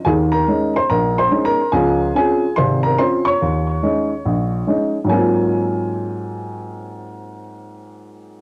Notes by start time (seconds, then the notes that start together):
0.05 D#2 D#3 G#4 G#5
0.32 A#4 A#5
0.48 G#3 C#4 D#4
0.76 C5 C6
0.90 A#1 A#4 A#5
1.18 C5 C6
1.30 G#3 C#4 D#4
1.45 A#4 A#5
1.72 C#2 F3 G#4 G#5
2.15 C4 C#4 F4 G#4 G#5
2.56 G#1 C3 C5 C6
2.83 A#4 A#5
2.98 C4 C#4 F4 C5 C6
3.25 C#5 C#6
3.42 D#2
3.83 G#3 C#4 D#4
4.26 A#1
4.67 G#3 C#4 D#4
5.04 G#2 F#3
5.10 A#3 C4 G#5
5.17 F4